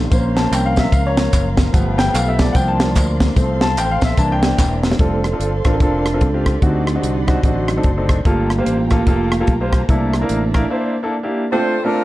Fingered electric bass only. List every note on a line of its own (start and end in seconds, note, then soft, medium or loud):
0.12 0.46 A#1 loud
0.52 0.86 C2 medium
0.92 1.27 C#2 medium
1.33 1.68 F#1 medium
1.74 2.09 G1 loud
2.14 2.49 B1 medium
2.55 2.96 C2 loud
2.96 3.30 D2 loud
3.36 3.77 C2 loud
3.77 3.98 A1 loud
4.02 4.16 A#1 medium
4.17 4.52 C2 loud
4.59 4.93 E1 medium
5.00 5.34 F1 loud
5.39 5.61 G1 medium
5.65 5.80 A1 medium
5.80 6.23 F1 medium
6.21 6.56 C#2 medium
6.62 6.97 D2 medium
7.03 7.38 C2 medium
7.43 7.78 A1 medium
7.84 8.19 F#1 medium
8.25 8.60 G1 loud
8.66 9.01 A1 medium
9.07 9.42 F1 medium
9.48 9.82 B1 medium
9.89 10.23 C2 medium
10.30 10.64 A1 medium